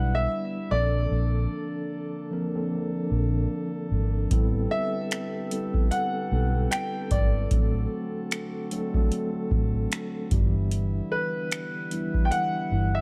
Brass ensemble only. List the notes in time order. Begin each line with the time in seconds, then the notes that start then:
Already playing: D3 G3 B3 E4
0.72 D3 A#3 D4 A4
4.31 G4 B4
7.52 D3 C4 F#4
10.31 D3 G3 B3 E4